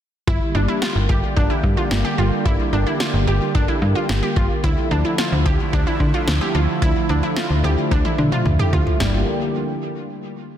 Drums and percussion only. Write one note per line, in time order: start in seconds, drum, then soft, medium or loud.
0.27 kick loud
0.82 snare loud
1.09 kick medium
1.37 kick loud
1.64 kick medium
1.91 snare loud
2.46 kick loud
3.00 snare loud
3.55 kick loud
4.09 snare loud
4.36 kick loud
4.64 kick loud
5.18 snare loud
5.46 kick medium
5.73 kick medium
6.00 kick medium
6.28 snare loud
6.82 kick loud
7.37 snare loud
7.91 kick loud
7.91 high tom medium
8.05 high tom medium
8.18 mid tom medium
8.32 mid tom medium
8.46 mid tom medium
8.59 mid tom medium
8.73 floor tom medium
8.87 floor tom medium
9.00 snare loud